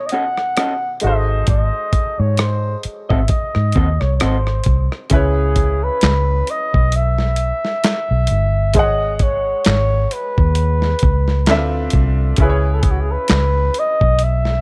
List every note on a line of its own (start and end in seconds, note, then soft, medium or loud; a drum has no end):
0.00 0.98 B2 medium
0.00 0.99 D#3 medium
0.00 0.98 B3 medium
0.00 1.00 A4 medium
0.00 1.04 C#5 medium
0.06 0.11 D#5 medium
0.06 closed hi-hat medium
0.12 0.24 C#4 medium
0.12 0.24 F#4 medium
0.12 0.24 A4 medium
0.12 0.24 D#5 medium
0.12 0.98 F#5 loud
0.37 cross-stick soft
0.57 0.72 C#4 medium
0.57 0.72 F#4 medium
0.57 0.73 A4 medium
0.57 0.73 D#5 medium
0.57 cross-stick medium
0.57 closed hi-hat medium
1.00 1.42 G#1 medium
1.00 4.61 G#3 medium
1.00 4.62 D#4 medium
1.00 closed hi-hat medium
1.04 4.63 F#4 medium
1.04 4.63 A4 soft
1.04 4.64 C5 medium
1.04 1.45 D#5 medium
1.47 1.70 G#1 loud
1.47 2.21 D#5 medium
1.47 kick loud
1.47 closed hi-hat medium
1.93 muted fingered electric bass stroke soft
1.93 kick medium
1.93 closed hi-hat medium
2.19 2.75 G#2 medium
2.19 2.41 C#5 medium
2.37 2.80 C5 medium
2.37 cross-stick loud
2.37 closed hi-hat medium
2.83 muted fingered electric bass stroke soft
2.83 closed hi-hat medium
3.09 3.27 G#1 medium
3.09 3.20 C4 soft
3.09 3.19 F#4 medium
3.09 3.19 A4 medium
3.09 3.19 D#5 medium
3.09 3.31 E5 medium
3.09 kick medium
3.28 4.02 D#5 medium
3.28 kick medium
3.28 closed hi-hat medium
3.55 3.73 G#2 medium
3.55 cross-stick soft
3.72 3.87 C4 medium
3.72 kick loud
3.72 closed hi-hat medium
3.76 3.97 D#2 medium
3.76 3.87 F#4 medium
3.76 3.87 A4 medium
3.76 3.88 D#5 medium
4.01 4.18 C2 medium
4.01 4.14 C#5 medium
4.01 cross-stick soft
4.17 4.23 C#5 medium
4.17 cross-stick medium
4.17 closed hi-hat medium
4.21 4.60 G#1 medium
4.21 4.36 C4 medium
4.21 4.36 F#4 medium
4.21 4.36 A4 medium
4.21 4.92 C5 medium
4.21 4.36 D#5 medium
4.47 cross-stick soft
4.64 4.88 C2 medium
4.64 kick medium
4.64 closed hi-hat medium
4.92 cross-stick soft
5.10 5.89 C#2 loud
5.10 8.70 C#3 medium
5.10 8.71 C#4 medium
5.10 8.71 E4 medium
5.10 5.85 G#4 loud
5.10 8.72 B4 medium
5.10 kick loud
5.10 closed hi-hat medium
5.15 8.73 C#5 medium
5.56 kick medium
5.56 closed hi-hat medium
5.84 6.52 B4 loud
6.01 6.41 C#2 loud
6.01 snare loud
6.01 clap medium
6.01 closed hi-hat medium
6.47 6.97 D#5 loud
6.47 closed hi-hat medium
6.74 7.51 B1 medium
6.74 kick loud
6.92 8.79 E5 loud
6.92 closed hi-hat medium
7.18 snare soft
7.36 closed hi-hat medium
7.65 snare soft
7.84 snare loud
7.84 clap medium
7.84 closed hi-hat medium
8.11 8.27 B1 medium
8.27 8.76 G1 medium
8.27 closed hi-hat medium
8.74 9.52 G#1 loud
8.74 11.43 G#3 medium
8.74 11.44 G#4 medium
8.74 8.83 C5 soft
8.74 9.16 D#5 loud
8.74 kick loud
8.74 closed hi-hat medium
8.78 11.45 D#5 medium
8.78 11.46 F#5 medium
8.83 11.48 C#5 medium
9.16 9.24 D#5 medium
9.16 closed hi-hat medium
9.20 9.67 C#5 medium
9.20 kick medium
9.65 10.05 G#1 loud
9.65 10.15 C#5 loud
9.65 snare loud
9.65 clap medium
9.65 closed hi-hat medium
10.11 11.94 B4 medium
10.11 closed hi-hat medium
10.38 10.93 D#2 medium
10.38 kick medium
10.55 closed hi-hat medium
10.82 snare soft
10.99 kick loud
10.99 closed hi-hat medium
11.03 11.50 C#2 loud
11.28 snare soft
11.46 11.87 D2 loud
11.46 12.39 D3 medium
11.46 12.39 D4 medium
11.46 11.56 E4 medium
11.46 snare loud
11.46 clap medium
11.46 closed hi-hat medium
11.50 12.40 C4 medium
11.50 12.40 E5 medium
11.56 12.43 F4 medium
11.90 12.32 C2 loud
11.90 kick medium
11.90 closed hi-hat medium
12.36 13.16 C#2 loud
12.36 14.61 C#3 medium
12.36 14.61 C#4 medium
12.36 14.61 E4 medium
12.36 kick loud
12.36 closed hi-hat medium
12.41 12.75 G#4 medium
12.41 14.61 B4 medium
12.41 12.48 C#5 medium
12.50 14.61 C#5 medium
12.74 12.83 A4 medium
12.82 12.93 G#4 medium
12.82 kick medium
12.82 closed hi-hat medium
12.91 13.02 F#4 medium
13.01 13.13 G#4 medium
13.12 13.81 B4 loud
13.28 13.69 C#2 medium
13.28 snare loud
13.28 clap medium
13.28 closed hi-hat medium
13.74 closed hi-hat medium
13.79 14.25 D#5 loud
14.01 14.61 B1 medium
14.01 kick loud
14.19 closed hi-hat medium
14.23 14.61 E5 loud
14.45 snare soft